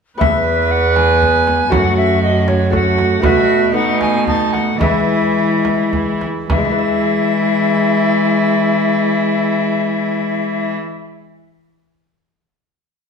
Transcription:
0.18 E2 B3 B4 E5, frame drum
0.71 F#5
0.96 G#5, frame drum
1.22 frame drum
1.47 frame drum
1.70 F#2 A3 F#4 C#5 F#5, frame drum
1.74 F#2
1.97 E5
2.23 D#5
2.48 C#5, frame drum
2.70 A3 F#4 C#5, frame drum
2.75 F#5
2.98 frame drum
3.20 B2 A3 F#4 B4 E5, frame drum
3.72 A3 D#4 B4 F#5
4.01 G#5, frame drum
4.27 A3 D#4 A5, frame drum
4.53 F#5, frame drum
4.79 E3 G#3 E4 B4 E5, frame drum
4.83 G#3
5.65 frame drum
5.93 frame drum
6.21 frame drum
6.50 E3 G#3 E4 E5, frame drum
6.58 G#3
6.65 E4
6.71 B4
6.79 E5

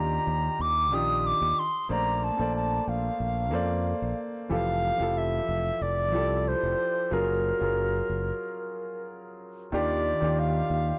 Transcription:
Already playing: D#2 D#3 D4 F4 G4 A#5
0.27 D#2
0.59 D#2 D6
0.91 A#1 D#3 D4 F4 G4 D#6
1.27 D6
1.41 D#2
1.59 C6
1.89 A#1 A3 A#3 C5 D5 A#5
2.24 A5
2.37 A#1 A#3 A4 C5
2.41 D5
2.56 A5
2.87 A#1 F5
3.20 A#1
3.51 F2 A#3 A4 C5
3.55 D5
4.02 A#1
4.49 F1 E3 F3 G4 A4 F5
4.98 F1 F3 E4 G4
5.02 A4
5.18 E5
5.49 F1
5.81 F1 D5
6.12 C2 F3 E4 G4
6.16 A4
6.48 C5
6.63 F1
7.11 F#1 F#3 F4 G#4 A#4
7.59 F#1 F#3 F4 G#4
7.63 A#4
8.09 F#1
9.72 D#2 D#3 D4 F4 G4 D5
10.20 D#2 D#3 D4 F4
10.24 G4
10.39 F5
10.70 D#2

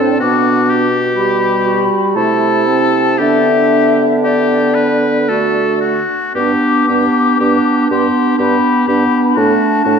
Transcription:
Already playing: A2 C4 D4 A4
0.01 C5
0.11 D5
0.20 B2 B3 D4 F#4 D6
0.70 G4
1.16 G3 G4 B5
1.66 F#4
2.16 C3 A3 E4 A4 A5
2.68 C4
3.18 D3 B3 D4 G4 E5
4.24 G4 D5
4.75 B4
5.29 A3 F#4 A4
5.81 F#4
6.35 G2 B3 D4 G4 D6
6.87 G2 B3 D4 G4
7.40 G2 B3 D4 G4
7.90 G2 B3 D4 G4 C6
8.38 G2 B3 D4 G4 B5
8.87 G2 B3 D4 G4
9.35 A2 A3 D4 F#4 A5
9.85 A2 A3 D4 F#4

